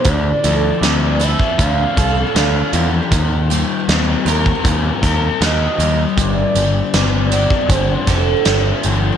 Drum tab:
HH |x-x-x-x-x-x-x-x-|x-x-x-x-x-x-x-x-|x-x-x-x-x-x-x-x-|
SD |----o-------o---|----o-----o-o---|----o-----o-o---|
BD |o------oo-o-----|o------oo-o-----|o------oo-o-----|